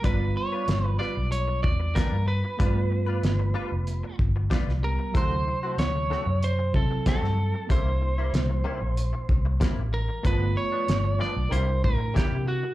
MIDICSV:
0, 0, Header, 1, 7, 480
1, 0, Start_track
1, 0, Tempo, 638298
1, 27, Time_signature, 4, 2, 24, 8
1, 9582, End_track
2, 0, Start_track
2, 0, Title_t, "Lead electric guitar"
2, 0, Program_c, 0, 29
2, 39, Note_on_c, 0, 71, 90
2, 257, Note_off_c, 0, 71, 0
2, 278, Note_on_c, 0, 73, 96
2, 654, Note_off_c, 0, 73, 0
2, 654, Note_on_c, 0, 71, 96
2, 742, Note_off_c, 0, 71, 0
2, 745, Note_on_c, 0, 74, 91
2, 987, Note_off_c, 0, 74, 0
2, 990, Note_on_c, 0, 73, 90
2, 1223, Note_off_c, 0, 73, 0
2, 1226, Note_on_c, 0, 74, 96
2, 1468, Note_on_c, 0, 70, 82
2, 1475, Note_off_c, 0, 74, 0
2, 1709, Note_off_c, 0, 70, 0
2, 1712, Note_on_c, 0, 71, 83
2, 3121, Note_off_c, 0, 71, 0
2, 3642, Note_on_c, 0, 70, 85
2, 3859, Note_off_c, 0, 70, 0
2, 3888, Note_on_c, 0, 72, 97
2, 4351, Note_off_c, 0, 72, 0
2, 4354, Note_on_c, 0, 73, 91
2, 4844, Note_on_c, 0, 72, 98
2, 4846, Note_off_c, 0, 73, 0
2, 5078, Note_off_c, 0, 72, 0
2, 5081, Note_on_c, 0, 69, 80
2, 5317, Note_off_c, 0, 69, 0
2, 5326, Note_on_c, 0, 69, 82
2, 5767, Note_off_c, 0, 69, 0
2, 5802, Note_on_c, 0, 72, 87
2, 7204, Note_off_c, 0, 72, 0
2, 7473, Note_on_c, 0, 70, 86
2, 7716, Note_off_c, 0, 70, 0
2, 7719, Note_on_c, 0, 71, 96
2, 7936, Note_off_c, 0, 71, 0
2, 7949, Note_on_c, 0, 73, 100
2, 8426, Note_off_c, 0, 73, 0
2, 8429, Note_on_c, 0, 74, 90
2, 8664, Note_on_c, 0, 72, 91
2, 8675, Note_off_c, 0, 74, 0
2, 8889, Note_off_c, 0, 72, 0
2, 8905, Note_on_c, 0, 70, 91
2, 9129, Note_off_c, 0, 70, 0
2, 9152, Note_on_c, 0, 67, 82
2, 9384, Note_off_c, 0, 67, 0
2, 9387, Note_on_c, 0, 66, 74
2, 9582, Note_off_c, 0, 66, 0
2, 9582, End_track
3, 0, Start_track
3, 0, Title_t, "Clean electric guitar"
3, 0, Program_c, 1, 27
3, 27, Note_on_c, 1, 55, 68
3, 34, Note_on_c, 1, 62, 74
3, 40, Note_on_c, 1, 65, 68
3, 43, Note_on_c, 1, 71, 78
3, 174, Note_off_c, 1, 55, 0
3, 178, Note_off_c, 1, 62, 0
3, 181, Note_off_c, 1, 65, 0
3, 182, Note_off_c, 1, 71, 0
3, 393, Note_on_c, 1, 71, 53
3, 405, Note_on_c, 1, 65, 46
3, 418, Note_on_c, 1, 62, 44
3, 502, Note_off_c, 1, 62, 0
3, 506, Note_off_c, 1, 65, 0
3, 509, Note_off_c, 1, 71, 0
3, 745, Note_on_c, 1, 55, 72
3, 748, Note_on_c, 1, 62, 73
3, 752, Note_on_c, 1, 65, 83
3, 759, Note_on_c, 1, 71, 83
3, 864, Note_off_c, 1, 71, 0
3, 870, Note_off_c, 1, 65, 0
3, 871, Note_off_c, 1, 55, 0
3, 872, Note_off_c, 1, 62, 0
3, 1468, Note_on_c, 1, 55, 67
3, 1472, Note_on_c, 1, 62, 78
3, 1478, Note_on_c, 1, 65, 78
3, 1482, Note_on_c, 1, 71, 84
3, 1615, Note_off_c, 1, 55, 0
3, 1618, Note_off_c, 1, 62, 0
3, 1621, Note_off_c, 1, 65, 0
3, 1622, Note_off_c, 1, 71, 0
3, 1946, Note_on_c, 1, 55, 67
3, 1952, Note_on_c, 1, 62, 68
3, 1957, Note_on_c, 1, 65, 70
3, 1963, Note_on_c, 1, 71, 84
3, 2095, Note_off_c, 1, 55, 0
3, 2098, Note_off_c, 1, 62, 0
3, 2100, Note_off_c, 1, 65, 0
3, 2103, Note_off_c, 1, 71, 0
3, 2304, Note_on_c, 1, 71, 55
3, 2318, Note_on_c, 1, 65, 56
3, 2326, Note_on_c, 1, 62, 50
3, 2422, Note_off_c, 1, 62, 0
3, 2425, Note_off_c, 1, 71, 0
3, 2426, Note_off_c, 1, 65, 0
3, 2664, Note_on_c, 1, 55, 78
3, 2668, Note_on_c, 1, 62, 83
3, 2672, Note_on_c, 1, 65, 94
3, 2678, Note_on_c, 1, 71, 88
3, 2783, Note_off_c, 1, 71, 0
3, 2790, Note_off_c, 1, 55, 0
3, 2790, Note_off_c, 1, 65, 0
3, 2793, Note_off_c, 1, 62, 0
3, 3386, Note_on_c, 1, 55, 81
3, 3391, Note_on_c, 1, 62, 81
3, 3398, Note_on_c, 1, 65, 92
3, 3402, Note_on_c, 1, 71, 86
3, 3535, Note_off_c, 1, 55, 0
3, 3537, Note_off_c, 1, 62, 0
3, 3541, Note_off_c, 1, 65, 0
3, 3543, Note_off_c, 1, 71, 0
3, 3866, Note_on_c, 1, 50, 70
3, 3873, Note_on_c, 1, 57, 72
3, 3877, Note_on_c, 1, 60, 73
3, 3882, Note_on_c, 1, 66, 75
3, 4015, Note_off_c, 1, 50, 0
3, 4018, Note_off_c, 1, 57, 0
3, 4020, Note_off_c, 1, 60, 0
3, 4023, Note_off_c, 1, 66, 0
3, 4234, Note_on_c, 1, 66, 51
3, 4245, Note_on_c, 1, 60, 48
3, 4257, Note_on_c, 1, 57, 42
3, 4350, Note_off_c, 1, 66, 0
3, 4352, Note_off_c, 1, 57, 0
3, 4355, Note_off_c, 1, 60, 0
3, 4589, Note_on_c, 1, 50, 75
3, 4595, Note_on_c, 1, 57, 74
3, 4599, Note_on_c, 1, 60, 67
3, 4606, Note_on_c, 1, 66, 75
3, 4708, Note_off_c, 1, 66, 0
3, 4713, Note_off_c, 1, 50, 0
3, 4714, Note_off_c, 1, 60, 0
3, 4716, Note_off_c, 1, 57, 0
3, 5310, Note_on_c, 1, 50, 72
3, 5316, Note_on_c, 1, 57, 75
3, 5320, Note_on_c, 1, 60, 81
3, 5324, Note_on_c, 1, 66, 80
3, 5456, Note_off_c, 1, 50, 0
3, 5459, Note_off_c, 1, 57, 0
3, 5462, Note_off_c, 1, 60, 0
3, 5463, Note_off_c, 1, 66, 0
3, 5785, Note_on_c, 1, 48, 67
3, 5792, Note_on_c, 1, 55, 73
3, 5796, Note_on_c, 1, 58, 75
3, 5801, Note_on_c, 1, 64, 76
3, 5934, Note_off_c, 1, 48, 0
3, 5937, Note_off_c, 1, 55, 0
3, 5939, Note_off_c, 1, 58, 0
3, 5942, Note_off_c, 1, 64, 0
3, 6153, Note_on_c, 1, 64, 52
3, 6163, Note_on_c, 1, 58, 52
3, 6172, Note_on_c, 1, 55, 41
3, 6263, Note_off_c, 1, 55, 0
3, 6266, Note_off_c, 1, 58, 0
3, 6268, Note_off_c, 1, 64, 0
3, 6499, Note_on_c, 1, 48, 88
3, 6504, Note_on_c, 1, 55, 86
3, 6509, Note_on_c, 1, 58, 80
3, 6514, Note_on_c, 1, 64, 86
3, 6613, Note_off_c, 1, 64, 0
3, 6618, Note_off_c, 1, 58, 0
3, 6623, Note_off_c, 1, 55, 0
3, 6627, Note_off_c, 1, 48, 0
3, 7220, Note_on_c, 1, 48, 80
3, 7226, Note_on_c, 1, 55, 85
3, 7230, Note_on_c, 1, 58, 96
3, 7237, Note_on_c, 1, 64, 81
3, 7371, Note_off_c, 1, 48, 0
3, 7374, Note_off_c, 1, 55, 0
3, 7376, Note_off_c, 1, 58, 0
3, 7379, Note_off_c, 1, 64, 0
3, 7696, Note_on_c, 1, 43, 75
3, 7702, Note_on_c, 1, 53, 70
3, 7707, Note_on_c, 1, 59, 72
3, 7713, Note_on_c, 1, 62, 80
3, 7848, Note_off_c, 1, 43, 0
3, 7851, Note_off_c, 1, 53, 0
3, 7854, Note_off_c, 1, 59, 0
3, 7857, Note_off_c, 1, 62, 0
3, 8062, Note_on_c, 1, 62, 52
3, 8070, Note_on_c, 1, 59, 45
3, 8084, Note_on_c, 1, 53, 44
3, 8172, Note_off_c, 1, 53, 0
3, 8176, Note_off_c, 1, 59, 0
3, 8179, Note_off_c, 1, 62, 0
3, 8415, Note_on_c, 1, 43, 76
3, 8421, Note_on_c, 1, 53, 76
3, 8426, Note_on_c, 1, 59, 82
3, 8431, Note_on_c, 1, 62, 82
3, 8529, Note_off_c, 1, 62, 0
3, 8537, Note_off_c, 1, 59, 0
3, 8540, Note_off_c, 1, 53, 0
3, 8545, Note_off_c, 1, 43, 0
3, 8651, Note_on_c, 1, 48, 76
3, 8656, Note_on_c, 1, 55, 76
3, 8659, Note_on_c, 1, 58, 73
3, 8664, Note_on_c, 1, 64, 78
3, 8765, Note_off_c, 1, 64, 0
3, 8771, Note_off_c, 1, 58, 0
3, 8777, Note_off_c, 1, 55, 0
3, 8783, Note_off_c, 1, 48, 0
3, 9130, Note_on_c, 1, 48, 74
3, 9136, Note_on_c, 1, 55, 75
3, 9141, Note_on_c, 1, 58, 84
3, 9144, Note_on_c, 1, 64, 84
3, 9286, Note_off_c, 1, 48, 0
3, 9288, Note_off_c, 1, 55, 0
3, 9291, Note_off_c, 1, 58, 0
3, 9292, Note_off_c, 1, 64, 0
3, 9582, End_track
4, 0, Start_track
4, 0, Title_t, "Reed electric piano"
4, 0, Program_c, 2, 4
4, 12, Note_on_c, 2, 55, 59
4, 28, Note_on_c, 2, 59, 57
4, 44, Note_on_c, 2, 65, 70
4, 1911, Note_off_c, 2, 55, 0
4, 1919, Note_off_c, 2, 59, 0
4, 1928, Note_off_c, 2, 65, 0
4, 1936, Note_on_c, 2, 57, 62
4, 1948, Note_on_c, 2, 59, 55
4, 1963, Note_on_c, 2, 65, 71
4, 3593, Note_off_c, 2, 57, 0
4, 3599, Note_off_c, 2, 59, 0
4, 3606, Note_off_c, 2, 65, 0
4, 3619, Note_on_c, 2, 55, 41
4, 3626, Note_on_c, 2, 59, 37
4, 3632, Note_on_c, 2, 67, 49
4, 3849, Note_on_c, 2, 54, 56
4, 3864, Note_off_c, 2, 55, 0
4, 3866, Note_on_c, 2, 48, 57
4, 3868, Note_off_c, 2, 59, 0
4, 3871, Note_off_c, 2, 67, 0
4, 3879, Note_on_c, 2, 64, 65
4, 5035, Note_off_c, 2, 54, 0
4, 5043, Note_off_c, 2, 48, 0
4, 5050, Note_off_c, 2, 64, 0
4, 5058, Note_on_c, 2, 54, 47
4, 5067, Note_on_c, 2, 60, 44
4, 5072, Note_on_c, 2, 64, 49
4, 5768, Note_on_c, 2, 58, 56
4, 5783, Note_off_c, 2, 54, 0
4, 5783, Note_on_c, 2, 62, 55
4, 5788, Note_off_c, 2, 60, 0
4, 5790, Note_off_c, 2, 64, 0
4, 5800, Note_on_c, 2, 64, 63
4, 7667, Note_off_c, 2, 58, 0
4, 7674, Note_off_c, 2, 62, 0
4, 7683, Note_off_c, 2, 64, 0
4, 7692, Note_on_c, 2, 57, 66
4, 7709, Note_on_c, 2, 59, 53
4, 7723, Note_on_c, 2, 65, 69
4, 8640, Note_off_c, 2, 57, 0
4, 8641, Note_on_c, 2, 70, 68
4, 8648, Note_off_c, 2, 59, 0
4, 8656, Note_off_c, 2, 65, 0
4, 8656, Note_on_c, 2, 62, 64
4, 8670, Note_on_c, 2, 64, 74
4, 9582, Note_off_c, 2, 62, 0
4, 9582, Note_off_c, 2, 64, 0
4, 9582, Note_off_c, 2, 70, 0
4, 9582, End_track
5, 0, Start_track
5, 0, Title_t, "Fingered electric bass"
5, 0, Program_c, 3, 33
5, 29, Note_on_c, 3, 31, 92
5, 253, Note_off_c, 3, 31, 0
5, 509, Note_on_c, 3, 31, 92
5, 733, Note_off_c, 3, 31, 0
5, 880, Note_on_c, 3, 35, 84
5, 1209, Note_off_c, 3, 35, 0
5, 1234, Note_on_c, 3, 40, 79
5, 1456, Note_off_c, 3, 40, 0
5, 1593, Note_on_c, 3, 43, 80
5, 1817, Note_off_c, 3, 43, 0
5, 1954, Note_on_c, 3, 43, 94
5, 2402, Note_off_c, 3, 43, 0
5, 2430, Note_on_c, 3, 31, 90
5, 2654, Note_off_c, 3, 31, 0
5, 2795, Note_on_c, 3, 29, 88
5, 3018, Note_off_c, 3, 29, 0
5, 3151, Note_on_c, 3, 31, 69
5, 3374, Note_off_c, 3, 31, 0
5, 3514, Note_on_c, 3, 36, 77
5, 3738, Note_off_c, 3, 36, 0
5, 3870, Note_on_c, 3, 38, 93
5, 4094, Note_off_c, 3, 38, 0
5, 4344, Note_on_c, 3, 38, 83
5, 4571, Note_off_c, 3, 38, 0
5, 4708, Note_on_c, 3, 42, 75
5, 5043, Note_off_c, 3, 42, 0
5, 5069, Note_on_c, 3, 48, 74
5, 5293, Note_off_c, 3, 48, 0
5, 5430, Note_on_c, 3, 43, 77
5, 5655, Note_off_c, 3, 43, 0
5, 5792, Note_on_c, 3, 36, 91
5, 6240, Note_off_c, 3, 36, 0
5, 6267, Note_on_c, 3, 36, 89
5, 6491, Note_off_c, 3, 36, 0
5, 6627, Note_on_c, 3, 34, 79
5, 6853, Note_off_c, 3, 34, 0
5, 6988, Note_on_c, 3, 36, 82
5, 7212, Note_off_c, 3, 36, 0
5, 7350, Note_on_c, 3, 33, 86
5, 7575, Note_off_c, 3, 33, 0
5, 7707, Note_on_c, 3, 31, 94
5, 7931, Note_off_c, 3, 31, 0
5, 8184, Note_on_c, 3, 31, 86
5, 8409, Note_off_c, 3, 31, 0
5, 8546, Note_on_c, 3, 35, 76
5, 8656, Note_off_c, 3, 35, 0
5, 8661, Note_on_c, 3, 36, 102
5, 8888, Note_off_c, 3, 36, 0
5, 8907, Note_on_c, 3, 45, 81
5, 9131, Note_off_c, 3, 45, 0
5, 9265, Note_on_c, 3, 48, 86
5, 9491, Note_off_c, 3, 48, 0
5, 9582, End_track
6, 0, Start_track
6, 0, Title_t, "Muted clean electric guitar strokes"
6, 268, Note_on_c, 9, 29, 40
6, 344, Note_off_c, 9, 29, 0
6, 505, Note_on_c, 9, 29, 40
6, 580, Note_off_c, 9, 29, 0
6, 635, Note_on_c, 9, 29, 44
6, 710, Note_off_c, 9, 29, 0
6, 873, Note_on_c, 9, 29, 43
6, 948, Note_off_c, 9, 29, 0
6, 1110, Note_on_c, 9, 29, 40
6, 1185, Note_off_c, 9, 29, 0
6, 1351, Note_on_c, 9, 29, 45
6, 1426, Note_off_c, 9, 29, 0
6, 1709, Note_on_c, 9, 29, 40
6, 1784, Note_off_c, 9, 29, 0
6, 1835, Note_on_c, 9, 29, 42
6, 1910, Note_off_c, 9, 29, 0
6, 2187, Note_on_c, 9, 29, 36
6, 2262, Note_off_c, 9, 29, 0
6, 2426, Note_on_c, 9, 29, 47
6, 2502, Note_off_c, 9, 29, 0
6, 2552, Note_on_c, 9, 29, 51
6, 2627, Note_off_c, 9, 29, 0
6, 2792, Note_on_c, 9, 29, 49
6, 2868, Note_off_c, 9, 29, 0
6, 3034, Note_on_c, 9, 29, 45
6, 3109, Note_off_c, 9, 29, 0
6, 3278, Note_on_c, 9, 29, 44
6, 3353, Note_off_c, 9, 29, 0
6, 3629, Note_on_c, 9, 29, 37
6, 3704, Note_off_c, 9, 29, 0
6, 3752, Note_on_c, 9, 29, 38
6, 3828, Note_off_c, 9, 29, 0
6, 4116, Note_on_c, 9, 29, 39
6, 4191, Note_off_c, 9, 29, 0
6, 4358, Note_on_c, 9, 29, 40
6, 4433, Note_off_c, 9, 29, 0
6, 4477, Note_on_c, 9, 29, 40
6, 4552, Note_off_c, 9, 29, 0
6, 4717, Note_on_c, 9, 29, 46
6, 4792, Note_off_c, 9, 29, 0
6, 4953, Note_on_c, 9, 29, 45
6, 5028, Note_off_c, 9, 29, 0
6, 5194, Note_on_c, 9, 29, 41
6, 5269, Note_off_c, 9, 29, 0
6, 5547, Note_on_c, 9, 29, 39
6, 5622, Note_off_c, 9, 29, 0
6, 5671, Note_on_c, 9, 29, 40
6, 5746, Note_off_c, 9, 29, 0
6, 6027, Note_on_c, 9, 29, 39
6, 6102, Note_off_c, 9, 29, 0
6, 6268, Note_on_c, 9, 29, 39
6, 6343, Note_off_c, 9, 29, 0
6, 6386, Note_on_c, 9, 29, 43
6, 6461, Note_off_c, 9, 29, 0
6, 6622, Note_on_c, 9, 29, 50
6, 6697, Note_off_c, 9, 29, 0
6, 6865, Note_on_c, 9, 29, 45
6, 6941, Note_off_c, 9, 29, 0
6, 7109, Note_on_c, 9, 29, 46
6, 7184, Note_off_c, 9, 29, 0
6, 7461, Note_on_c, 9, 29, 40
6, 7537, Note_off_c, 9, 29, 0
6, 7586, Note_on_c, 9, 29, 37
6, 7661, Note_off_c, 9, 29, 0
6, 7940, Note_on_c, 9, 29, 39
6, 8016, Note_off_c, 9, 29, 0
6, 8177, Note_on_c, 9, 29, 42
6, 8252, Note_off_c, 9, 29, 0
6, 8302, Note_on_c, 9, 29, 43
6, 8377, Note_off_c, 9, 29, 0
6, 8538, Note_on_c, 9, 29, 47
6, 8614, Note_off_c, 9, 29, 0
6, 8774, Note_on_c, 9, 29, 45
6, 8849, Note_off_c, 9, 29, 0
6, 9012, Note_on_c, 9, 29, 42
6, 9087, Note_off_c, 9, 29, 0
6, 9372, Note_on_c, 9, 29, 41
6, 9447, Note_off_c, 9, 29, 0
6, 9499, Note_on_c, 9, 29, 39
6, 9575, Note_off_c, 9, 29, 0
6, 9582, End_track
7, 0, Start_track
7, 0, Title_t, "Drums"
7, 30, Note_on_c, 9, 42, 56
7, 32, Note_on_c, 9, 36, 106
7, 105, Note_off_c, 9, 42, 0
7, 107, Note_off_c, 9, 36, 0
7, 510, Note_on_c, 9, 42, 63
7, 519, Note_on_c, 9, 38, 109
7, 585, Note_off_c, 9, 42, 0
7, 594, Note_off_c, 9, 38, 0
7, 761, Note_on_c, 9, 38, 33
7, 837, Note_off_c, 9, 38, 0
7, 993, Note_on_c, 9, 42, 64
7, 1068, Note_off_c, 9, 42, 0
7, 1234, Note_on_c, 9, 36, 82
7, 1309, Note_off_c, 9, 36, 0
7, 1475, Note_on_c, 9, 36, 80
7, 1476, Note_on_c, 9, 42, 64
7, 1485, Note_on_c, 9, 38, 104
7, 1550, Note_off_c, 9, 36, 0
7, 1551, Note_off_c, 9, 42, 0
7, 1560, Note_off_c, 9, 38, 0
7, 1954, Note_on_c, 9, 36, 106
7, 1956, Note_on_c, 9, 42, 59
7, 2029, Note_off_c, 9, 36, 0
7, 2031, Note_off_c, 9, 42, 0
7, 2432, Note_on_c, 9, 42, 59
7, 2441, Note_on_c, 9, 38, 96
7, 2507, Note_off_c, 9, 42, 0
7, 2516, Note_off_c, 9, 38, 0
7, 2911, Note_on_c, 9, 42, 57
7, 2986, Note_off_c, 9, 42, 0
7, 3152, Note_on_c, 9, 36, 83
7, 3227, Note_off_c, 9, 36, 0
7, 3392, Note_on_c, 9, 36, 85
7, 3393, Note_on_c, 9, 42, 54
7, 3402, Note_on_c, 9, 38, 114
7, 3467, Note_off_c, 9, 36, 0
7, 3468, Note_off_c, 9, 42, 0
7, 3477, Note_off_c, 9, 38, 0
7, 3526, Note_on_c, 9, 38, 31
7, 3601, Note_off_c, 9, 38, 0
7, 3871, Note_on_c, 9, 36, 103
7, 3871, Note_on_c, 9, 42, 55
7, 3946, Note_off_c, 9, 36, 0
7, 3946, Note_off_c, 9, 42, 0
7, 4350, Note_on_c, 9, 42, 54
7, 4359, Note_on_c, 9, 38, 108
7, 4425, Note_off_c, 9, 42, 0
7, 4434, Note_off_c, 9, 38, 0
7, 4599, Note_on_c, 9, 38, 32
7, 4675, Note_off_c, 9, 38, 0
7, 4831, Note_on_c, 9, 42, 56
7, 4907, Note_off_c, 9, 42, 0
7, 5070, Note_on_c, 9, 36, 85
7, 5145, Note_off_c, 9, 36, 0
7, 5309, Note_on_c, 9, 42, 66
7, 5310, Note_on_c, 9, 36, 82
7, 5318, Note_on_c, 9, 38, 110
7, 5385, Note_off_c, 9, 42, 0
7, 5386, Note_off_c, 9, 36, 0
7, 5394, Note_off_c, 9, 38, 0
7, 5445, Note_on_c, 9, 38, 31
7, 5520, Note_off_c, 9, 38, 0
7, 5790, Note_on_c, 9, 36, 104
7, 5793, Note_on_c, 9, 42, 61
7, 5865, Note_off_c, 9, 36, 0
7, 5868, Note_off_c, 9, 42, 0
7, 6270, Note_on_c, 9, 42, 60
7, 6279, Note_on_c, 9, 38, 103
7, 6346, Note_off_c, 9, 42, 0
7, 6355, Note_off_c, 9, 38, 0
7, 6748, Note_on_c, 9, 42, 63
7, 6823, Note_off_c, 9, 42, 0
7, 6986, Note_on_c, 9, 36, 91
7, 7061, Note_off_c, 9, 36, 0
7, 7226, Note_on_c, 9, 36, 91
7, 7228, Note_on_c, 9, 42, 65
7, 7237, Note_on_c, 9, 38, 109
7, 7302, Note_off_c, 9, 36, 0
7, 7303, Note_off_c, 9, 42, 0
7, 7312, Note_off_c, 9, 38, 0
7, 7705, Note_on_c, 9, 36, 113
7, 7707, Note_on_c, 9, 42, 54
7, 7781, Note_off_c, 9, 36, 0
7, 7782, Note_off_c, 9, 42, 0
7, 8184, Note_on_c, 9, 42, 59
7, 8193, Note_on_c, 9, 38, 102
7, 8260, Note_off_c, 9, 42, 0
7, 8269, Note_off_c, 9, 38, 0
7, 8438, Note_on_c, 9, 38, 31
7, 8513, Note_off_c, 9, 38, 0
7, 8667, Note_on_c, 9, 42, 61
7, 8742, Note_off_c, 9, 42, 0
7, 8905, Note_on_c, 9, 36, 89
7, 8980, Note_off_c, 9, 36, 0
7, 9146, Note_on_c, 9, 36, 84
7, 9148, Note_on_c, 9, 42, 67
7, 9157, Note_on_c, 9, 38, 102
7, 9221, Note_off_c, 9, 36, 0
7, 9223, Note_off_c, 9, 42, 0
7, 9232, Note_off_c, 9, 38, 0
7, 9582, End_track
0, 0, End_of_file